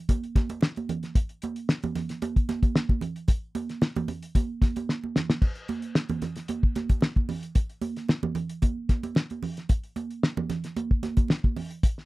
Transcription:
0.09 kick, closed hi-hat, muted conga, high conga
0.24 closed hi-hat
0.35 kick, snare, closed hi-hat, muted conga, high conga
0.49 closed hi-hat, high conga
0.61 snare, muted conga
0.76 closed hi-hat, high conga
0.89 closed hi-hat, low conga
1.03 snare, closed hi-hat
1.15 kick, closed hi-hat, muted conga
1.29 closed hi-hat
1.42 closed hi-hat, high conga
1.56 closed hi-hat
1.69 snare, muted conga
1.83 closed hi-hat, high conga, low conga
1.95 snare, closed hi-hat, low conga
2.09 snare, closed hi-hat
2.22 closed hi-hat, muted conga, high conga
2.36 kick, closed hi-hat
2.49 snare, closed hi-hat, muted conga, high conga
2.63 kick, closed hi-hat, high conga
2.76 snare
2.89 kick, high conga
3.01 closed hi-hat, muted conga, low conga
3.16 closed hi-hat
3.28 kick, closed hi-hat, muted conga
3.55 closed hi-hat, muted conga, high conga
3.69 snare, closed hi-hat
3.82 snare, muted conga
3.96 closed hi-hat, high conga, low conga
4.08 closed hi-hat, muted conga, low conga
4.23 closed hi-hat
4.35 kick, closed hi-hat, high conga
4.62 kick, snare, closed hi-hat, high conga
4.76 closed hi-hat, high conga
4.89 snare
5.04 high conga
5.16 snare, low conga
5.30 snare
5.42 kick, crash, muted conga
5.55 closed hi-hat
5.68 closed hi-hat, muted conga, high conga
5.82 closed hi-hat
5.95 snare
6.09 closed hi-hat, high conga, low conga
6.22 snare, closed hi-hat, muted conga, low conga
6.36 snare, closed hi-hat
6.48 closed hi-hat, muted conga, high conga
6.63 kick
6.75 snare, closed hi-hat, muted conga, high conga
6.89 kick, closed hi-hat, high conga
7.01 snare, muted conga
7.16 kick, high conga
7.29 open hi-hat, muted conga, low conga
7.43 closed hi-hat
7.55 kick, closed hi-hat, muted conga
7.69 closed hi-hat
7.81 closed hi-hat, muted conga, high conga
7.96 snare, closed hi-hat
8.09 snare, muted conga
8.23 high conga, low conga
8.35 closed hi-hat, muted conga, low conga
8.49 closed hi-hat
8.62 kick, closed hi-hat, muted conga, high conga
8.89 kick, snare, closed hi-hat, high conga
9.03 closed hi-hat, high conga
9.15 snare, muted conga
9.30 closed hi-hat, high conga
9.43 open hi-hat, muted conga, low conga
9.57 snare, closed hi-hat
9.69 kick, closed hi-hat, muted conga
9.84 closed hi-hat
9.96 closed hi-hat, high conga
10.11 closed hi-hat
10.23 snare
10.37 high conga, low conga
10.50 snare, closed hi-hat, muted conga, low conga
10.64 snare, closed hi-hat
10.76 closed hi-hat, muted conga, high conga
10.91 kick
11.03 snare, closed hi-hat, high conga
11.17 kick, closed hi-hat, high conga
11.28 snare, muted conga
11.44 kick, high conga
11.57 open hi-hat, muted conga, low conga
11.71 closed hi-hat
11.83 kick, closed hi-hat
11.98 snare

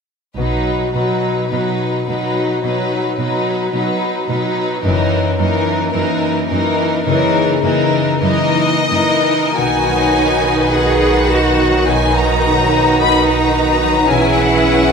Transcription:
0.37 B1 B2 F#3 D#4 B4
0.94 B2 F#3 B3 D#4 B4
1.51 B2 F#3 D#4 F#4 B4
2.08 B2 F#3 B3 D#4 B4
2.64 B2 F#3 D#4 B4
3.19 B2 F#3 B3 D#4 B4
3.74 B2 F#3 D#4 F#4 B4
4.29 B2 F#3 B3 D#4 B4
4.84 F#1 F#2 E3 D#4 A#4
5.38 F#2 E3 A#3 D#4 A#4
5.94 F#2 E3 D#4 E4 A#4
6.50 F#2 E3 A#3 D#4 A#4
7.06 F#2 C#3 E3 D#4 A#4
7.63 F#2 E3 A#3 D#4 A#4
8.22 F#2 E3 D#4 E4 A#4 D#5
8.90 F#2 E3 A#3 D#4 A#4
9.57 B1 B2 D#3 D#4 F#4 B4 G#5
9.88 F#3
10.18 B3
10.46 D#4
10.74 D#4 F#4 G#4 D#5 F#5
11.03 D#4
11.30 B3 D#4 F#4
11.59 F#3
11.87 B2 D#4 F#4 B4 G#5
12.15 B3 A#5
12.45 F#3
12.73 D#4
13.00 D#4 D#5 B5
13.28 D#4 A#5
13.55 B3
13.83 F#3
14.10 B1 B2 E3 C#4 E4 G#4 G#5
14.37 B3 F#5
14.65 C#4

